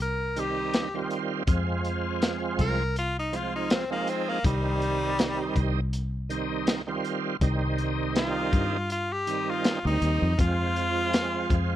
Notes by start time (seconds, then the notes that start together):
Already playing: C2
0.02 A#4
0.36 D#3 G3 C4 D#4 G4, closed hi-hat
0.74 snare, closed hi-hat
0.94 D#3 G3 C4 F4
1.11 closed hi-hat
1.47 F2 F3 G#3 C4 F4, kick, closed hi-hat
1.85 closed hi-hat
2.22 snare, closed hi-hat
2.59 C2 A#4, kick, closed hi-hat
2.96 F4, closed hi-hat
3.19 D#4
3.33 F3 G#3 C4 F4, closed hi-hat
3.55 D#4
3.70 C4, snare, closed hi-hat
3.90 F3 G#3 A#3 C4 D#4
4.07 C4, closed hi-hat
4.29 A#3
4.44 C2 D#3 G3 C4 D#4, kick, closed hi-hat
4.82 closed hi-hat
5.19 snare, closed hi-hat
5.56 C2, kick, closed hi-hat
5.93 closed hi-hat
6.29 D#3 G3 C4 D#4, closed hi-hat
6.67 snare, closed hi-hat
6.87 D#3 G3 C4 F4
7.05 closed hi-hat
7.41 C2 D#3 G3 C4 D#4, kick, closed hi-hat
7.78 closed hi-hat
8.16 F4, snare, closed hi-hat
8.53 G2, kick, closed hi-hat
8.90 F4, closed hi-hat
9.12 G4
9.27 D#3 G3 C4 D#4, closed hi-hat
9.50 F4
9.64 snare, closed hi-hat
9.84 D2 D#3 G3 C4 D#4
10.02 D#2, closed hi-hat
10.22 F2
10.38 F2 F3 G#3 C4 F4, kick, closed hi-hat
10.76 closed hi-hat
11.13 snare, closed hi-hat
11.50 F2, kick, closed hi-hat